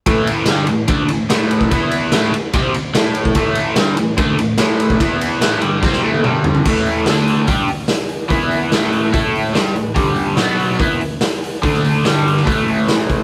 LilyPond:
<<
  \new Staff \with { instrumentName = "Overdriven electric guitar" } { \clef bass \time 4/4 \key e \dorian \tempo 4 = 145 <a, e a>4 <g, d g>8 <a, e>8 <d a d'>8 <a, e>8 <a, e a>4 | <e b e'>4 <a, e a>8 r8 <c g c'>8 r8 <a e' a'>4 | <a, e a>4 <g, d g>8 <a, e>8 <d a d'>8 <a, e>8 <a, e a>4 | <e b e'>4 <a, e a>8 <g, d g>8 <c g c'>8 <a, e a>8 <g, d g>4 |
<a, e a>4 <d a d'>4 <g d' g'>8 r4. | <e b e'>4 <a, e a>4 <a e' a'>4 <g d' g'>8 <a, e>8 | <g, d g>4 <b, fis b>4 <e b e'>8 r4. | <d a d'>4 <g, d g>4 <a, e a>2 | }
  \new DrumStaff \with { instrumentName = "Drums" } \drummode { \time 4/4 <bd cymr>8 cymr8 <cymr sn>8 cymr8 <bd cymr>8 cymr8 <cymr sn>16 sn16 cymr16 bd16 | <bd cymr>8 cymr8 <cymr sn>8 cymr8 <bd cymr>8 cymr8 <cymr sn>8 cymr16 bd16 | <bd cymr>8 cymr8 <cymr sn>8 cymr8 <bd cymr>8 cymr8 <cymr sn>8 cymr16 bd16 | <bd cymr>8 cymr8 <cymr sn>8 cymr8 <bd sn>16 sn8 tommh16 toml8 tomfh16 tomfh16 |
<cymc bd>8 hho8 <hho sn>8 hho8 <hho bd>8 hho8 <hho sn>8 hho8 | <hho bd>8 hho8 <hho sn>8 hho8 <hho bd>8 hho8 <hho sn>8 hho8 | <hho bd>8 hho8 <hho sn>8 hho8 <hho bd>8 hho8 <hho sn>8 hho8 | <hho bd>16 sn16 hho8 <hho sn>8 hho16 sn16 <hho bd>8 hho8 <hho sn>8 <hho bd>8 | }
>>